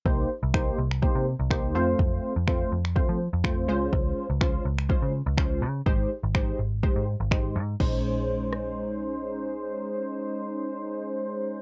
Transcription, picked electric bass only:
\new Staff \with { instrumentName = "Picked electric bass" } { \clef bass \time 4/4 \key bes \dorian \tempo 4 = 124 c,8 r16 c,8. c,8. c8 c,8. f,8 | f,8 r16 f,8. f,8. f8 f,8. des,8 | des,8 r16 des,8. des,8. des8 des,8. des8 | aes,,8 r16 aes,,8. aes,,8. aes,8 aes,,8. aes,8 |
bes,,1~ | bes,,1 | }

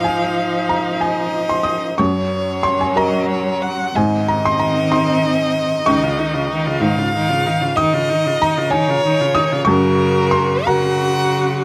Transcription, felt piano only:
<<
  \new Staff \with { instrumentName = "Felt piano" } { \time 6/8 \key des \major \tempo 4. = 62 aes''4 bes''8 aes''8. c'''16 ees'''8 | des'''4 c'''16 aes''16 bes''4. | aes''8 bes''16 c'''16 bes''8 c'''8 r4 | des'''2. |
ees'''4 bes''8 aes''4 ees'''8 | des'''4 c'''8 bes''4. | }
  \new Staff \with { instrumentName = "Felt piano" } { \clef bass \time 6/8 \key des \major aes,2. | ges,4. <ges' bes'>4. | aes,4. <ees' ees''>4. | des,4. aes,4.~ |
aes,2. | ges,4. <ges' bes'>4. | }
>>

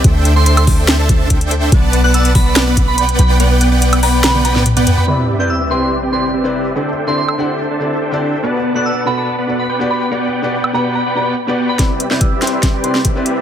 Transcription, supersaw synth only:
\new Staff \with { instrumentName = "Supersaw synth" } { \time 4/4 \key c \lydian \tempo 4 = 143 <d' a' c'' e'' g''>8. <d' a' c'' e'' g''>8. <d' a' c'' e'' g''>8. <d' a' c'' e'' a''>8. <d' a' c'' e'' g''>4 | <b b' d'' fis'' a''>8. <b b' d'' fis'' a''>8. <b b' d'' fis'' a''>8. <b b' d'' fis'' b''>8. <b b' d'' fis'' g''>4 | <b b' d'' fis'' g''>8. <b b' d'' fis'' g''>8. <b b' d'' fis'' g''>8. <b b' d'' fis'' g''>8. r16 <b b' d'' fis'' g''>8. | <c' g' b' d'' e''>8. <c' g' b' d'' e''>8. <c' g' b' d'' e''>8. <c' g' b' d'' g''>8. <c' g' b' d'' e''>4 |
<d' a' c'' e'' g''>8. <d' a' c'' e'' g''>8. <d' a' c'' e'' g''>8. <d' a' c'' e'' a''>8. <d' a' c'' e'' g''>4 | <b b' d'' fis'' a''>8. <b b' d'' fis'' a''>8. <b b' d'' fis'' a''>8. <b b' d'' fis'' b''>8. <b b' d'' fis'' g''>4 | <b b' d'' fis'' g''>8. <b b' d'' fis'' g''>8. <b b' d'' fis'' g''>8. <b b' d'' fis'' g''>8. r16 <b b' d'' fis'' g''>8. | <c' g' b' d'' e''>8. <c' g' b' d'' e''>8. <c' g' b' d'' e''>8. <c' g' b' d'' g''>8. <c' g' b' d'' e''>4 | }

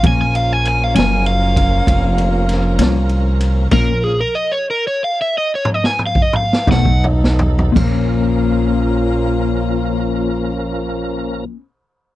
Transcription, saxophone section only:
\new Staff \with { instrumentName = "Saxophone section" } { \time 12/8 \key bes \minor \tempo 4. = 60 << { r1. | f'4 r2. r8 dis'4. | <bes des' f'>1. | } \\ { <bes des' f'>1.~ | <bes des' f'>4 r2. r8 <a b>4. | r1. | } >> }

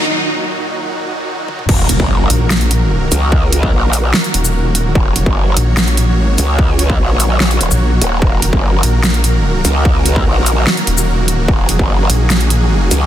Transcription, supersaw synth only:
\new Staff \with { instrumentName = "Supersaw synth" } { \time 4/4 \key ees \minor \tempo 4 = 147 << { ges'1 | r1 | r1 | des''1~ |
des''1 | bes'1~ | bes'1 | aes'1 | } \\ { <bes, ees ges ees'>1 | <ees ges bes ges'>1~ | <ees ges bes ges'>1~ | <ees ges bes ges'>1~ |
<ees ges bes ges'>1~ | <ees ges bes ges'>1~ | <ees ges bes ges'>1~ | <ees ges bes ges'>1 | } >> }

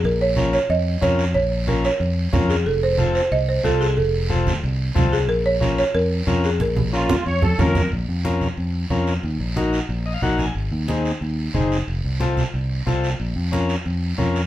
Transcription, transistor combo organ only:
\new Staff \with { instrumentName = "Transistor combo organ" } { \time 4/4 \key bes \minor \tempo 4 = 182 r4 <des' f' bes'>8 r4. <des' f' bes'>8 r8 | r4 <des' f' bes'>8 r4. <des' f' bes'>8 r8 | r4 <c' f' a'>8 r4. <c' f' a'>8 r8 | r4 <c' f' a'>8 r4. <c' f' a'>8 r8 |
r4 <des' f' bes'>8 r4. <des' f' bes'>8 r8 | r4 <des' f' bes'>8 r4. <des' f' bes'>8 r8 | r4 <des' f' bes'>8 r4. <des' f' bes'>8 r8 | r4 <ees' ges' bes'>8 r4 ees''16 f''16 <ees' ges' bes' ges''>8 aes''8 |
r4 <c' ees' aes'>8 r4. <c' ees' aes'>8 r8 | r4 <c' f' a'>8 r4. <c' f' a'>8 r8 | r4 <des' f' bes'>8 r4. <des' f' bes'>8 r8 | }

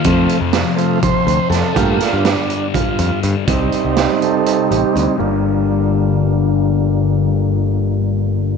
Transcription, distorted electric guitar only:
\new Staff \with { instrumentName = "Distorted electric guitar" } { \clef bass \time 7/8 \key g \minor \tempo 4 = 122 <f, c f>2.~ <f, c f>8 | <g, d g>2.~ <g, d g>8 | <c g c'>2.~ <c g c'>8 | <g, d g>2.~ <g, d g>8~ |
<g, d g>2.~ <g, d g>8 | }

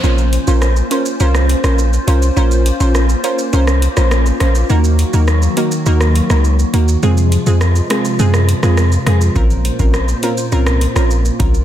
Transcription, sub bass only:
\new Staff \with { instrumentName = "Sub bass" } { \clef bass \time 4/4 \key bes \minor \tempo 4 = 103 bes,,8. bes,,8. r8 c,8. bes,,8. c,8 | bes,,8. bes,,8. r8 c,8. bes,,8. bes,,8 | ees,8. ees,8. r8 ees,8. des,8. ees,8 | f,8. f,8. r8 ges,8. f,8. f,8 |
bes,,8. bes,,8. r8 c,8. bes,,8. c,8 | }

